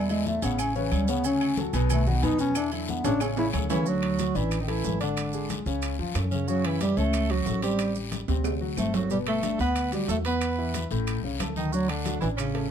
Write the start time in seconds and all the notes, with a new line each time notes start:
Already playing: E2 G3
0.10 D3 G#3 D4 E4, high conga, low agogo, maracas
0.26 A3, high conga, short guiro, maracas
0.42 A1 C#3 B3 C#4 C#5, low agogo, short guiro, maracas
0.59 C#4, high conga, low agogo, long guiro, claves, maracas
0.75 C#3 E3 C#4 C#5, high conga, maracas
0.91 D2 G3, high conga, low agogo, short guiro, claves, maracas
1.08 C#3 B3 C#4 C#5, short guiro, maracas
1.24 C#3 C#4 C#5, high conga, low agogo, long guiro, maracas
1.41 high conga, low agogo, claves, maracas
1.57 F#3 F#4 A4, high conga, short guiro, maracas
1.73 B1 B2 B3 B4, high conga, low agogo, short guiro, maracas
1.90 A3, high conga, low conga, low agogo, long guiro, claves, maracas
2.06 D#3 B3 D#4 F#4, high conga, low conga, maracas
2.22 E2 B2 B3 D#4 B4, high conga, low agogo, short guiro, maracas
2.39 C#4, high conga, short guiro, maracas
2.55 D3 D4 E4, low agogo, long guiro, claves, maracas
2.72 D3 F#3 D4 E4, high conga, low agogo, maracas
2.88 B3, high conga, short guiro, maracas
3.04 A1 C#3 C#4 D4 C#5, high timbale, low agogo, short guiro, maracas
3.20 C#4, high conga, high timbale, low agogo, long guiro, claves, maracas
3.37 C#3 C#4 E4 C#5, high conga, high timbale, maracas
3.53 D2, high conga, low timbale, low agogo, short guiro, claves, maracas
3.70 C#3 E3 C#4 E4 C#5, low timbale, short guiro, maracas
3.86 D3 F#3 D4 F#4, high conga, long guiro, maracas
4.02 high conga, high timbale, claves
4.19 F#3 F#4, high conga, high timbale, low timbale, short guiro, maracas
4.35 A1 E3 D4 E4 D5, short guiro, maracas
4.51 high timbale, long guiro, claves, maracas
4.61 D#3 D#4
4.68 E3 A3 E4 A4, high conga, high timbale
4.84 G#1, high conga, low timbale, short guiro, maracas
5.00 D3 D4 D5, high timbale, short guiro, maracas
5.17 high conga, high timbale, long guiro, claves, maracas
5.33 G#3 G#4, maracas
5.50 high conga, high timbale, low timbale, short guiro, maracas
5.66 C#2 C#3 C#4, short guiro, maracas
5.82 high conga, high timbale, long guiro, claves, maracas
5.99 F2 F3 F4, high conga
6.15 F#2 C#4 C#5, high conga, high timbale, low timbale, short guiro, claves, maracas
6.31 C#3 C#4, high conga, short guiro, maracas
6.48 C#3 F#3 C#4 F#4, high conga, long guiro, maracas
6.64 E3 E4, high timbale, claves
6.81 E3 G3 E4 G4, high conga, high timbale, low timbale, short guiro, maracas
6.97 C#2 A3 C#4 A4 C#5, short guiro, maracas
7.13 high conga, high timbale, long guiro, claves, maracas
7.30 F#3 F#4, high timbale
7.46 A1, high conga, low timbale, short guiro, maracas
7.62 G3 C4 G4 C5, high timbale, short guiro, maracas
7.79 high conga, high timbale, long guiro, claves, maracas
7.95 G3 G4, high conga, maracas
8.12 high conga, high timbale, low timbale, short guiro, maracas
8.28 D2 C3 C4, high conga, high timbale, short guiro, maracas
8.44 high conga, high timbale, long guiro, claves, maracas
8.61 F#3 F#4, high conga
8.77 G1 A3 C4 A4 C5, high conga, low timbale, short guiro, claves, maracas
8.94 F#3 F#4, high conga, low timbale, short guiro, maracas
9.10 B2 G3 B3 G4, high conga, long guiro, maracas
9.27 A3 A4, high conga, high timbale, claves
9.43 D3 D4, high conga, high timbale, low timbale, short guiro, maracas
9.59 D2 B3 B4, high conga, short guiro, maracas
9.75 high conga, high timbale, long guiro, claves, maracas
9.92 F#3 G3 F#4 G4, high conga, high timbale, maracas
10.08 E2 A3 A4, high conga, low timbale, short guiro, maracas
10.25 B3 B4, high timbale, short guiro, maracas
10.41 high conga, high timbale, long guiro, claves, maracas
10.58 E3 E4, high conga
10.74 high conga, high timbale, low timbale, short guiro, maracas
10.91 A1 A2 A3, high conga, short guiro, maracas
11.07 high conga, high timbale, long guiro, claves, maracas
11.23 C2 C#3 C#4, high conga
11.40 D2 A3 A4, high conga, high timbale, low timbale, short guiro, claves, maracas
11.56 D#3 D#4, high conga, short guiro, maracas
11.73 D3 F#3 D4 F#4, long guiro, maracas
11.89 D3 D4, high timbale, claves
12.05 F#3 F#4, high conga, high timbale, low timbale, short guiro, maracas
12.20 A1 E3 D4 E4 D5, short guiro, maracas
12.37 C#3 C#4, high conga, high timbale, long guiro, claves, maracas
12.54 A3 A4, high conga, high timbale